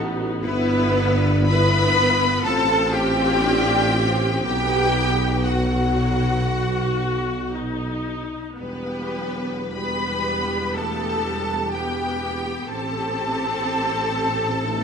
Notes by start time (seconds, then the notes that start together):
Already playing: A1 B3 D#4
0.00 F#4
0.44 G1 B3 E4 B4
0.96 D4
1.47 B3 E4 B4 B5
1.97 B3
2.44 A1 C4 F4 A4 A5
2.93 G4 G5
3.42 D4
3.93 C4
4.42 B1 B3 D#4 G4 G5
5.44 F#3 F#4 F#5
6.48 F#4
7.52 D#4
8.58 E1 E2 G3 B3 G4 B4
9.16 F#3
9.75 G3 B3 G4 B4 B5
10.77 A3 A4 A5
11.24 G3
11.72 B3 G4 G5
12.21 B3
12.69 A1 C4 G4 A4 A5
14.66 A3 B3 D#4